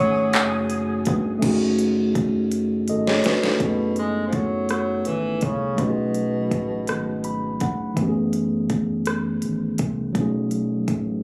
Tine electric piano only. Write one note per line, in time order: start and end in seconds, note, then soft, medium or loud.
0.00 1.37 A3 medium
0.00 1.38 C#4 medium
0.00 1.39 D#4 medium
0.00 1.40 F#4 medium
0.00 1.41 G#4 medium
1.39 3.55 A3 medium
1.39 3.56 C#4 medium
1.43 2.85 D#4 medium
1.43 2.87 F#4 medium
1.48 2.88 G#4 medium
2.90 3.06 A4 soft
2.90 3.06 D#5 medium
3.07 3.24 G#4 medium
3.07 3.24 C#5 medium
3.25 3.43 F#4 medium
3.25 3.42 B4 medium
3.43 3.78 D#4 medium
3.43 3.77 A4 medium
3.57 5.73 A3 medium
3.57 5.74 B3 soft
3.62 5.75 C#4 soft
3.66 5.77 G#4 soft
5.75 7.91 F#3 soft
5.75 7.92 A3 soft
5.79 7.93 C#4 soft
5.79 7.94 D#4 soft
5.83 5.87 G4 soft
5.90 7.98 G#4 medium
7.25 7.58 B5 medium
7.62 7.95 F#5 medium
7.94 10.10 E3 medium
7.94 10.11 A3 medium
7.98 10.12 B3 medium
7.98 10.13 C#4 medium
8.03 8.06 G4 medium
8.09 10.17 G#4 medium
10.13 11.23 F#3 medium
10.13 11.23 A3 medium
10.17 11.23 C#4 medium
10.17 11.23 D#4 medium
10.17 11.23 G#4 medium